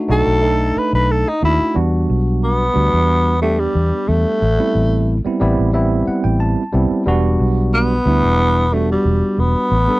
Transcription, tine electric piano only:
0.08 0.39 A3 medium
0.08 0.39 D4 medium
0.08 0.39 D#4 medium
0.08 0.40 F#4 medium
0.41 1.30 A3 medium
0.41 1.31 D4 medium
0.41 1.31 D#4 medium
0.41 1.31 A4 medium
1.42 1.72 A3 medium
1.42 1.72 D4 medium
1.42 1.72 D#4 medium
1.42 1.73 F#4 medium
1.74 2.63 G3 medium
1.74 2.63 B3 medium
1.74 2.64 D4 medium
1.74 2.64 F#4 medium
2.74 3.33 G3 medium
2.74 3.34 B3 medium
2.74 3.34 D4 medium
2.74 3.34 F#4 medium
3.42 4.41 G3 medium
3.42 4.42 B3 medium
3.42 4.42 D4 medium
3.42 4.42 G4 medium
4.58 5.16 G3 medium
4.58 5.17 B3 medium
4.58 5.17 C4 medium
4.58 5.17 E4 medium
5.25 5.39 G3 medium
5.25 5.39 B3 medium
5.25 5.39 C4 medium
5.25 5.40 E4 medium
5.40 5.70 G3 medium
5.40 5.70 B3 medium
5.40 5.70 C4 medium
5.40 5.71 E4 loud
5.40 5.72 D5 medium
5.73 6.61 G3 medium
5.73 6.62 B3 medium
5.73 6.62 C4 medium
5.73 6.62 E4 medium
5.73 6.05 E5 medium
6.07 6.24 F#5 medium
6.24 6.39 G5 medium
6.40 7.03 A5 medium
6.73 7.02 G3 loud
6.73 7.03 B3 medium
6.73 7.03 C4 medium
6.73 7.03 E4 medium
7.06 7.94 G3 medium
7.06 7.94 B3 medium
7.06 7.95 D4 medium
7.06 7.95 F#4 loud
8.05 8.64 G3 medium
8.05 8.65 B3 medium
8.05 8.65 D4 medium
8.05 8.65 E4 medium
8.72 9.74 G3 medium
8.72 9.74 B3 medium
8.72 9.75 D4 medium
8.72 9.75 F#4 medium
9.88 10.00 G3 medium
9.88 10.00 B3 medium
9.88 10.00 D4 medium
9.88 10.00 A4 medium

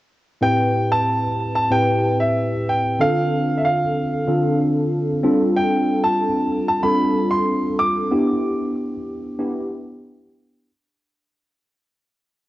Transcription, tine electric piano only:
0.41 1.25 A2 medium
0.41 1.25 C4 medium
0.41 1.25 E4 medium
0.41 1.25 G4 medium
0.41 1.25 B4 medium
1.70 2.53 A2 medium
1.70 2.53 C4 medium
1.70 2.54 E4 medium
1.70 2.54 G4 medium
1.70 2.54 B4 medium
2.99 3.82 D3 medium
2.99 3.82 C4 medium
2.99 3.83 D4 medium
2.99 3.83 F4 medium
2.99 3.83 A4 medium
4.27 5.10 D3 medium
4.27 5.11 C4 medium
4.27 5.11 D4 medium
4.27 5.11 F4 medium
4.27 5.11 A4 medium
5.23 6.26 G3 medium
5.23 6.26 C4 medium
5.23 6.27 D4 medium
5.23 6.27 F4 medium
5.23 6.27 A4 medium
6.83 7.66 G3 medium
6.83 7.66 C4 medium
6.83 7.67 D4 medium
6.83 7.67 F4 medium
6.83 7.67 A4 medium
8.11 8.94 B3 medium
8.11 8.95 D4 medium
8.11 8.95 E4 medium
8.11 8.95 G4 medium
9.39 10.22 B3 medium
9.39 10.22 D4 medium
9.39 10.23 E4 medium
9.39 10.23 G4 medium

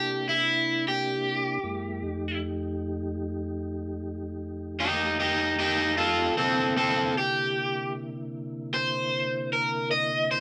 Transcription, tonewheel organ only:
0.00 1.59 C3 medium
0.00 1.59 A#3 medium
0.00 1.59 D4 medium
0.00 1.59 E4 medium
1.63 2.03 F#2 medium
1.63 2.03 G#3 medium
1.63 2.03 A#3 medium
1.63 2.02 E4 medium
2.03 6.31 F2 medium
2.03 6.31 A3 medium
2.03 6.31 D#4 medium
2.03 6.31 G4 medium
6.36 10.40 C3 medium
6.36 10.40 D3 medium
6.36 10.40 A#3 medium
6.36 10.40 E4 medium

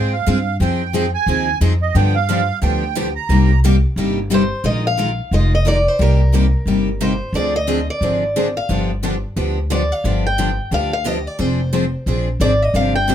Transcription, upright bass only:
0.00 0.21 G#2 medium
0.27 0.55 G2 medium
0.60 1.14 F2 medium
1.26 1.56 D#2 medium
1.61 1.90 F2 medium
1.95 2.49 G2 medium
2.62 3.16 D2 medium
3.29 3.83 C2 medium
3.96 4.51 G1 medium
4.64 5.18 A#1 medium
5.31 5.86 F1 medium
5.99 6.53 C2 medium
6.66 7.20 G1 medium
7.33 7.87 D2 medium
8.01 8.55 G#1 medium
8.69 9.23 G1 medium
9.36 9.91 D2 medium
10.04 10.58 G1 medium
10.71 11.25 D2 medium
11.39 11.93 F1 medium
12.06 12.35 A#1 medium
12.40 12.69 G#1 medium
12.74 13.15 G1 medium

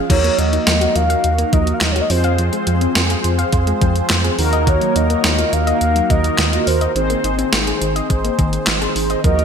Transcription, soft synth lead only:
0.10 0.40 C#5 loud
0.38 0.97 D#5 loud
0.96 1.54 F5 loud
1.53 1.75 D#5 loud
1.74 1.84 F5 medium
1.83 1.93 D#5 medium
1.92 2.03 C#5 medium
2.01 2.12 D#5 medium
2.10 2.67 C5 medium
4.68 4.97 C#5 loud
4.96 5.54 D#5 loud
5.53 6.12 F5 loud
6.10 6.69 D#5 loud
6.67 7.24 C5 medium
9.24 9.45 D#5 medium

